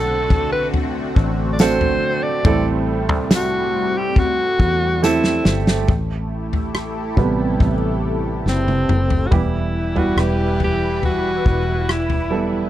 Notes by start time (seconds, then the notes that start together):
Already playing: B1 D3 A3 C4 D4 F#4 A4
0.30 kick, floor tom
0.52 B4
0.74 floor tom
1.16 A1, kick
1.53 D5
1.59 A3 C4 D4 F#4 A4 C5, snare, tambourine
1.81 floor tom
2.23 D5
2.45 A1 A2 G3 A3 C4 E4 A4, kick, floor tom
3.09 C2, floor tom
3.31 snare, tambourine
3.35 F#4
3.98 G4
4.16 F#4, kick, floor tom
4.59 E2, kick
5.02 A3 C4 E4 G4 A4, snare, tambourine
5.24 snare
5.45 G1, snare
5.67 snare
5.88 A1 A3 E4 G4 A4, kick, floor tom
6.53 floor tom
6.75 cross-stick
7.17 A1 C3 G3 B3, kick
7.60 A1, kick, floor tom
8.46 F#1 C4, snare
8.68 high tom
8.89 F#1, mid tom
9.10 floor tom
9.27 F#4
9.31 E1 E3 G3 B3 E4 G4 B4, kick, floor tom
9.36 E4
9.95 G3 B3 E4 F#4 B4, floor tom
10.17 E1 G4, cross-stick
10.60 G4, floor tom
11.03 F#4, floor tom
11.46 E1, kick
11.89 E4, cross-stick
12.10 floor tom
12.31 G3 B3 E4 A4